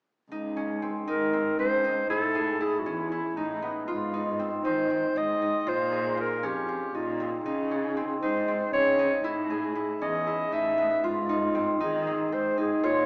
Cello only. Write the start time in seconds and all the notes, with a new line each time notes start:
0.30 C#2
1.08 G#2
1.58 C#2
2.10 A2
2.86 E2
3.37 A2
3.88 G#2
4.64 D#3
5.16 G#2
5.67 A#2
6.44 F2
6.94 A#2
7.45 C#3
8.22 G#2
8.73 C#3
9.24 A2
10.01 E2
10.53 A2
11.04 G#2
11.81 D#3
12.32 G#2
12.84 A#2